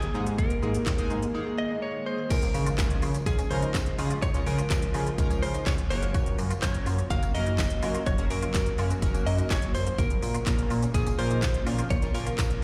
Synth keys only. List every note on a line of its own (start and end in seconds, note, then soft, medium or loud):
0.14 0.53 G#3 medium
0.14 0.53 A#3 medium
0.14 0.53 D#4 medium
0.14 0.53 G#4 medium
0.62 0.82 G#3 medium
0.62 0.82 A#3 medium
0.62 0.82 D#4 medium
0.62 0.82 G#4 medium
0.98 1.18 G#3 loud
0.98 1.18 A#3 medium
0.98 1.18 D#4 medium
0.98 1.18 G#4 loud
1.34 1.86 G#3 medium
1.34 1.86 A#3 medium
1.34 1.86 D#4 medium
1.34 1.86 G#4 medium
2.78 3.04 F3 medium
2.78 3.04 G#3 medium
2.78 3.04 C#4 medium
2.78 3.04 F4 medium
2.78 3.04 G#4 medium
3.26 3.39 F3 medium
3.26 3.39 G#3 medium
3.26 3.39 C#4 medium
3.26 3.39 F4 medium
3.26 3.39 G#4 medium
3.50 3.76 F3 medium
3.50 3.76 G#3 medium
3.50 3.76 C#4 medium
3.50 3.76 F4 medium
3.50 3.76 A#4 loud
3.98 4.18 F3 medium
3.98 4.18 G#3 medium
3.98 4.18 C#4 medium
3.98 4.18 F4 medium
3.98 4.18 G#4 medium
4.34 4.41 F3 medium
4.34 4.41 G#3 medium
4.34 4.41 C#4 medium
4.34 4.41 F4 medium
4.34 4.41 A#4 medium
4.46 4.59 F3 medium
4.46 4.59 G#3 medium
4.46 4.59 C#4 medium
4.46 4.59 F4 medium
4.46 4.59 G#4 medium
4.70 4.83 F3 medium
4.70 4.83 G#3 medium
4.70 4.83 C#4 medium
4.70 4.83 F4 medium
4.70 4.83 A#4 medium
4.94 5.07 F3 medium
4.94 5.07 G#3 medium
4.94 5.07 C#4 medium
4.94 5.07 F4 medium
4.94 5.07 G#4 medium
5.18 5.70 F3 medium
5.18 5.70 G#3 medium
5.18 5.70 C#4 medium
5.18 5.70 F4 medium
5.18 5.70 A#4 loud
5.90 6.48 F#3 medium
5.90 6.48 A#3 medium
5.90 6.48 C#4 medium
5.90 6.48 F#4 medium
5.90 6.48 A#4 medium
6.62 6.88 F#3 medium
6.62 6.88 A#3 medium
6.62 6.88 C#4 medium
6.62 6.88 F#4 medium
6.62 6.88 A#4 medium
7.10 7.23 F#3 medium
7.10 7.23 A#3 medium
7.10 7.23 C#4 medium
7.10 7.23 F#4 medium
7.10 7.24 A#4 medium
7.34 7.60 F#3 medium
7.34 7.60 A#3 medium
7.34 7.60 C#4 medium
7.34 7.60 F#4 medium
7.34 7.60 A#4 loud
7.82 8.02 F#3 medium
7.82 8.02 A#3 medium
7.82 8.02 C#4 medium
7.82 8.02 F#4 medium
7.82 8.02 A#4 medium
8.18 8.25 F#3 medium
8.18 8.25 A#3 medium
8.18 8.25 C#4 medium
8.18 8.25 F#4 medium
8.18 8.25 A#4 medium
8.30 8.43 F#3 medium
8.30 8.43 A#3 medium
8.30 8.43 C#4 medium
8.30 8.43 F#4 medium
8.30 8.43 A#4 medium
8.54 8.67 F#3 medium
8.54 8.67 A#3 medium
8.54 8.67 C#4 medium
8.54 8.67 F#4 medium
8.54 8.67 A#4 medium
8.78 8.91 F#3 medium
8.78 8.91 A#3 medium
8.78 8.91 C#4 medium
8.78 8.91 F#4 medium
8.78 8.91 A#4 medium
9.02 9.54 F#3 medium
9.02 9.54 A#3 medium
9.02 9.54 C#4 medium
9.02 9.54 F#4 medium
9.02 9.54 A#4 loud
10.46 10.72 F3 medium
10.46 10.72 A#3 medium
10.46 10.72 C#4 medium
10.46 10.72 F4 medium
10.46 10.72 A#4 medium
10.94 11.07 F3 medium
10.94 11.07 A#3 medium
10.94 11.07 C#4 medium
10.94 11.07 F4 medium
10.94 11.07 G#4 medium
11.18 11.44 F3 medium
11.18 11.44 A#3 medium
11.18 11.44 C#4 medium
11.18 11.44 F4 medium
11.18 11.44 A#4 loud
11.66 11.86 F3 medium
11.66 11.86 A#3 medium
11.66 11.86 C#4 medium
11.66 11.86 F4 medium
11.66 11.86 A#4 medium
12.02 12.09 F3 medium
12.02 12.09 A#3 medium
12.02 12.09 C#4 medium
12.02 12.09 F4 medium
12.02 12.09 A#4 medium
12.14 12.27 F3 medium
12.14 12.27 A#3 medium
12.14 12.27 C#4 medium
12.14 12.27 F4 medium
12.14 12.27 A#4 medium
12.38 12.51 F3 medium
12.38 12.51 A#3 medium
12.38 12.51 C#4 medium
12.38 12.51 F4 medium
12.38 12.51 A#4 medium